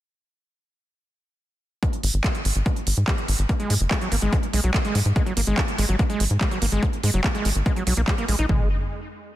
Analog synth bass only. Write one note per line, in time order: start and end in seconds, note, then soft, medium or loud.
2.03 2.10 G#1 medium
2.14 2.21 G#1 medium
2.45 2.52 G#1 loud
2.56 2.62 G#1 medium
2.87 2.94 G#1 medium
2.97 3.04 G#2 medium
3.28 3.35 G#1 medium
3.39 3.46 G#1 medium
3.70 3.77 G#2 medium
3.81 3.87 F#1 medium
4.12 4.19 G#1 loud
4.22 4.29 G#1 medium
4.53 4.60 B1 medium
4.64 4.71 B1 medium
4.95 5.02 G#2 medium
5.06 5.12 G#2 medium
5.37 5.44 G#1 medium
5.47 5.54 G#1 medium
5.78 5.85 G#1 medium
5.89 5.96 G#1 medium
6.20 6.27 G#1 medium
6.31 6.37 G#2 medium
6.62 6.69 G#1 medium
6.72 6.79 G#1 medium
7.03 7.10 G#2 loud
7.14 7.21 F#1 medium
7.45 7.52 G#1 loud
7.56 7.62 G#1 medium
7.87 7.94 B1 medium
7.97 8.04 B1 medium
8.28 8.35 A#1 loud
8.39 8.46 A#1 medium
8.49 8.69 G#1 loud